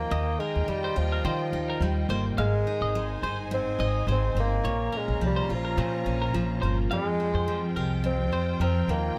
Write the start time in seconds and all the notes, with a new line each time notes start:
Already playing: D#3 F3 A#3 F4 G4 D#5 G5
0.11 D#2 D#3 D#5
0.39 G#3 D#4 A#4
0.55 D#2
0.68 F2 G3
0.84 C5
0.96 D#2 F3 F4
1.12 A#4
1.25 D#3 C5
1.53 D#2 D#4
1.70 A#4
1.80 D#2 G3
2.09 G1 A#3 C5
2.36 G#1 G#2 G#3 D#4 C5 F5 G#5
2.67 D#4
2.81 G#1 D#5
2.95 G#3
3.22 G1 G#4 C5
3.51 G#2 C4
3.79 G#1 D#4 D#5
4.07 G#1 G#3 C5
4.12 C4
4.35 G1 C4
4.40 A#3
4.64 A#1 A#2 F4 C#5 A#5
4.92 C#4 A#4
4.97 G#3
5.08 A#1
5.21 C2 F3
5.26 G3
5.36 C5
5.49 A#1 F4
5.54 F3
5.65 A#4
5.77 A#2 C5
6.06 A#1 C#4
6.22 A#4
6.34 A#1 F3
6.62 G1 A#3 C5
6.91 F2 G#3 F4 F5 G5
7.20 C4
7.34 F2 C5
7.48 F3
7.76 C2 G4 A#4
8.04 F2 C4
8.32 F2 C4 C5
8.60 F2 F3 C4 A#4
8.88 D#2 D#3 A#3 D#5